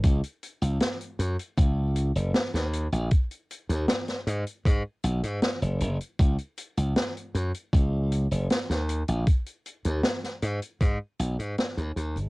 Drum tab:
HH |xxxxxxxxx-xxxxxx|xxxxxxxxx-xxxxxx|xxxxxxxxx-xxxxxx|xxxxxxxxx-xxxxxx|
SD |----o-------oo--|----oo------o---|----o-------oo--|----oo------o---|
BD |o-------o-------|o-------o-------|o-------o-------|o-------o-------|